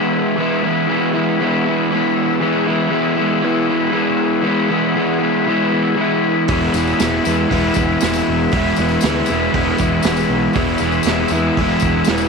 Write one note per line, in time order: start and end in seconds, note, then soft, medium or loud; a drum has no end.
0.00 0.36 E3 medium
0.00 0.38 G#3 medium
0.00 0.40 B3 medium
0.00 0.41 E4 medium
0.00 2.34 E4 medium
0.00 2.35 G#4 medium
0.00 2.36 B4 medium
0.37 0.87 E3 loud
0.37 0.68 G#3 medium
0.37 0.66 B3 loud
0.41 0.63 E4 loud
0.63 0.89 B3 medium
0.63 0.91 E4 medium
0.68 0.89 G#3 medium
0.88 1.40 E3 medium
0.88 1.17 G#3 medium
0.88 1.16 B3 medium
0.88 1.13 E4 medium
1.14 1.42 G#3 medium
1.14 1.43 B3 medium
1.14 1.44 E4 medium
1.40 1.91 E3 medium
1.40 1.69 G#3 loud
1.40 1.68 B3 loud
1.40 1.65 E4 loud
1.65 1.94 B3 medium
1.65 1.95 E4 medium
1.70 1.93 G#3 medium
1.91 2.40 E3 medium
1.91 2.42 G#3 medium
1.91 2.43 B3 medium
1.91 2.14 B5 medium
1.95 2.45 E4 medium
2.16 2.39 E5 medium
2.39 2.89 E3 medium
2.39 2.70 G#3 medium
2.39 2.69 B3 medium
2.39 6.44 E4 medium
2.39 6.45 G#4 medium
2.39 6.45 B4 medium
2.45 2.67 E4 medium
2.67 2.90 G#3 medium
2.67 2.93 B3 medium
2.67 2.93 E4 medium
2.90 3.42 E3 medium
2.90 3.21 G#3 medium
2.90 3.19 B3 medium
2.90 3.16 E4 medium
3.17 3.44 B3 medium
3.17 3.46 E4 medium
3.21 3.44 G#3 medium
3.42 3.91 E3 loud
3.42 3.72 G#3 medium
3.42 3.70 B3 loud
3.42 3.68 E4 loud
3.68 3.94 B3 medium
3.68 3.96 E4 medium
3.72 3.93 G#3 medium
3.92 4.41 E3 medium
3.92 4.43 G#3 medium
3.92 4.43 B3 medium
3.96 4.46 E4 medium
4.42 4.95 E3 medium
4.42 4.72 G#3 medium
4.42 4.71 B3 medium
4.46 4.69 E4 medium
4.70 4.96 G#3 medium
4.70 4.97 B3 medium
4.70 4.99 E4 medium
4.95 5.47 E3 medium
4.95 5.23 G#3 medium
4.95 5.22 B3 medium
4.95 5.19 E4 medium
5.19 5.49 B3 medium
5.19 5.50 E4 medium
5.24 5.48 G#3 medium
5.47 5.95 E3 medium
5.47 5.74 G#3 medium
5.47 5.73 B3 medium
5.47 5.70 E4 loud
5.70 5.98 B3 medium
5.70 6.00 E4 medium
5.74 5.98 G#3 medium
5.96 6.49 E3 medium
5.96 6.51 G#3 medium
5.96 6.51 B3 medium
6.01 6.52 E4 medium
6.47 6.67 E1 medium
6.47 6.99 E3 medium
6.47 10.50 E4 medium
6.47 10.52 G#4 medium
6.47 10.52 B4 medium
6.47 kick loud
6.47 open hi-hat medium
6.47 tambourine soft
6.51 6.78 G#3 medium
6.51 6.77 B3 medium
6.51 6.74 E4 medium
6.74 6.92 E1 medium
6.74 7.03 B3 medium
6.74 7.03 E4 medium
6.74 tambourine medium
6.78 7.01 G#3 medium
6.87 tambourine soft
6.99 7.18 E1 medium
6.99 7.49 E3 medium
6.99 7.29 G#3 medium
6.99 7.27 B3 medium
6.99 snare loud
6.99 open hi-hat soft
6.99 tambourine loud
7.04 7.24 E4 medium
7.24 7.44 E2 medium
7.24 7.52 B3 medium
7.24 7.53 E4 medium
7.24 tambourine medium
7.29 7.50 G#3 medium
7.49 7.69 E1 medium
7.49 8.02 E3 medium
7.49 7.80 G#3 medium
7.49 7.78 B3 loud
7.49 7.75 E4 medium
7.49 kick medium
7.49 open hi-hat medium
7.74 7.95 E1 medium
7.74 8.06 E4 medium
7.74 kick medium
7.74 tambourine medium
7.79 8.03 G#3 medium
7.79 8.04 B3 medium
8.01 8.20 E1 medium
8.01 8.52 E3 medium
8.01 8.54 G#3 medium
8.01 8.56 B3 medium
8.01 snare loud
8.01 open hi-hat soft
8.01 tambourine loud
8.06 8.56 E4 medium
8.13 tambourine medium
8.28 8.46 E1 medium
8.52 8.71 E1 medium
8.52 9.02 E3 medium
8.52 8.82 G#3 loud
8.52 kick loud
8.52 open hi-hat medium
8.52 tambourine soft
8.56 8.80 B3 medium
8.56 8.78 E4 loud
8.76 8.96 E1 medium
8.76 9.07 E4 medium
8.76 tambourine medium
8.80 9.04 G#3 medium
8.80 9.05 B3 medium
8.89 tambourine soft
9.01 9.21 D2 medium
9.01 9.52 E3 medium
9.01 9.33 G#3 medium
9.01 snare loud
9.01 open hi-hat medium
9.01 tambourine medium
9.06 9.32 B3 medium
9.06 9.30 E4 medium
9.26 9.47 E1 medium
9.26 tambourine medium
9.30 9.54 G#3 medium
9.30 9.55 B3 medium
9.30 9.57 E4 medium
9.52 9.73 E1 medium
9.52 10.03 E3 medium
9.52 9.83 G#3 loud
9.52 9.81 B3 loud
9.52 kick medium
9.52 open hi-hat medium
9.57 9.78 E4 loud
9.78 9.98 E1 medium
9.78 10.06 B3 medium
9.78 10.07 E4 medium
9.78 kick medium
9.78 tambourine medium
9.83 10.05 G#3 medium
10.03 10.23 E1 medium
10.03 10.54 E3 medium
10.03 10.55 G#3 medium
10.03 10.57 B3 medium
10.03 snare loud
10.03 open hi-hat medium
10.03 tambourine medium
10.07 10.58 E4 medium
10.16 tambourine medium
10.29 10.47 B1 medium
10.53 10.74 E1 medium
10.53 11.06 E3 medium
10.53 10.85 G#3 medium
10.53 12.29 E4 medium
10.53 12.29 G#4 medium
10.53 12.29 B4 medium
10.53 kick loud
10.53 open hi-hat medium
10.53 tambourine soft
10.57 10.84 B3 loud
10.57 10.80 E4 medium
10.78 10.99 E1 medium
10.78 11.10 E4 medium
10.78 tambourine medium
10.84 11.07 G#3 medium
10.84 11.09 B3 medium
10.92 tambourine soft
11.03 11.24 E1 medium
11.03 11.58 E3 medium
11.03 open hi-hat soft
11.03 tambourine medium
11.07 11.36 G#3 medium
11.07 11.35 B3 medium
11.07 11.32 E4 medium
11.07 snare loud
11.28 11.49 E2 loud
11.28 tambourine medium
11.32 11.60 G#3 medium
11.32 11.60 B3 medium
11.32 11.62 E4 medium
11.57 11.75 E1 loud
11.57 12.08 E3 loud
11.57 11.86 G#3 loud
11.57 11.85 B3 medium
11.57 kick medium
11.57 open hi-hat soft
11.62 11.83 E4 loud
11.80 12.01 E1 medium
11.80 12.13 E4 medium
11.80 kick medium
11.80 tambourine medium
11.85 12.10 G#3 medium
11.85 12.11 B3 medium
12.04 12.26 E1 medium
12.04 12.29 E3 medium
12.04 snare loud
12.04 open hi-hat soft
12.04 tambourine medium
12.10 12.29 G#3 medium
12.10 12.29 B3 medium
12.10 12.29 E4 medium
12.18 tambourine medium